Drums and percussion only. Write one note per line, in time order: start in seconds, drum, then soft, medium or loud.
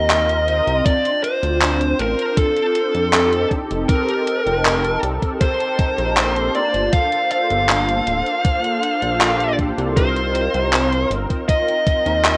0.10 clap loud
0.10 closed hi-hat loud
0.29 closed hi-hat soft
0.48 closed hi-hat soft
0.67 closed hi-hat soft
0.86 kick loud
0.86 closed hi-hat loud
1.05 closed hi-hat soft
1.24 closed hi-hat medium
1.43 closed hi-hat soft
1.61 clap loud
1.61 closed hi-hat loud
1.81 closed hi-hat soft
1.99 closed hi-hat medium
2.19 closed hi-hat soft
2.37 kick loud
2.37 closed hi-hat loud
2.57 closed hi-hat soft
2.75 closed hi-hat medium
2.95 closed hi-hat soft
3.13 clap loud
3.13 closed hi-hat loud
3.33 closed hi-hat soft
3.51 kick medium
3.51 closed hi-hat soft
3.71 closed hi-hat soft
3.89 kick loud
3.89 closed hi-hat medium
4.09 closed hi-hat soft
4.27 closed hi-hat medium
4.47 closed hi-hat soft
4.65 clap loud
4.65 closed hi-hat medium
4.84 closed hi-hat soft
5.03 closed hi-hat medium
5.22 kick medium
5.22 closed hi-hat soft
5.41 kick loud
5.41 closed hi-hat medium
5.60 closed hi-hat soft
5.79 kick loud
5.79 closed hi-hat medium
5.98 closed hi-hat soft
6.17 clap loud
6.17 closed hi-hat medium
6.36 closed hi-hat soft
6.55 closed hi-hat soft
6.74 closed hi-hat soft
6.93 kick loud
6.93 closed hi-hat medium
7.12 closed hi-hat soft
7.31 closed hi-hat medium
7.50 closed hi-hat soft
7.69 clap loud
7.69 closed hi-hat medium
7.89 closed hi-hat soft
8.07 closed hi-hat medium
8.26 closed hi-hat soft
8.45 kick loud
8.45 closed hi-hat medium
8.64 closed hi-hat soft
8.83 closed hi-hat medium
9.02 closed hi-hat soft
9.21 clap loud
9.21 closed hi-hat medium
9.40 closed hi-hat soft
9.59 kick medium
9.59 closed hi-hat soft
9.78 closed hi-hat soft
9.97 kick loud
9.97 closed hi-hat medium
10.16 closed hi-hat soft
10.35 closed hi-hat medium
10.54 closed hi-hat soft
10.73 clap loud
10.73 closed hi-hat medium
10.92 closed hi-hat soft
11.11 closed hi-hat medium
11.30 kick medium
11.30 closed hi-hat soft
11.49 kick loud
11.49 closed hi-hat medium
11.68 closed hi-hat soft
11.87 kick loud
11.87 closed hi-hat medium
12.06 closed hi-hat soft
12.25 clap loud
12.25 closed hi-hat medium